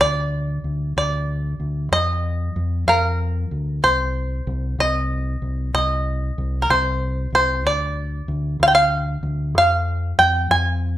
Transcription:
0.01 D2 D5
0.64 D2
0.97 D2 D5
1.60 D2
1.92 F2 D#5
2.56 F2
2.87 F2 A#4 F5
3.51 D2
3.83 C2 C5
4.47 C2
4.79 C2 D#5
5.42 C2
5.74 C2 D#5
6.38 C2
6.62 A#4
6.70 C2 C5
7.32 C2 C5
7.64 D2 D5
8.28 D2
8.60 D2 F5
8.68 G5
8.75 F5
9.23 D2
9.55 F2 F5
10.18 F2 G5
10.50 F2 G#5

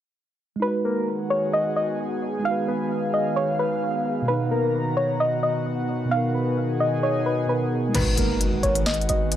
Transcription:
0.56 G#3 D#4
0.62 D#3 B3 F#4 G#4 B4
0.68 B4
0.85 A#4
1.30 C#5
1.53 D#5
1.76 D#5
2.39 G#3 D#4
2.45 F#4 F5
2.51 B4
2.68 B4
3.14 D#5
3.36 C#5
3.59 B4
4.22 B2
4.26 B3 D#4 F#4 B4 A#5
4.34 B4
4.51 A#4
4.97 C#5
5.20 D#5
5.43 D#5
6.05 B2 B3
6.11 D#4 G#4 F5
6.17 A#4
6.34 B4
6.80 D#5
7.03 C#5 D#5
7.26 B4
7.46 B2 B3 D#4 B4
7.52 A#4
7.89 G#3 D#4
7.95 G#1 G#2 B2 D#3 G#3 B3 F#4 B4, closed hi-hat, crash, impact
8.01 B4
8.17 G#1 A#4, closed hi-hat
8.41 closed hi-hat
8.63 G#1 C#5, closed hi-hat
8.75 closed hi-hat
8.86 D#5, snare, closed hi-hat
8.94 closed hi-hat
9.01 closed hi-hat
9.09 G#1 D#5, closed hi-hat
9.32 closed hi-hat

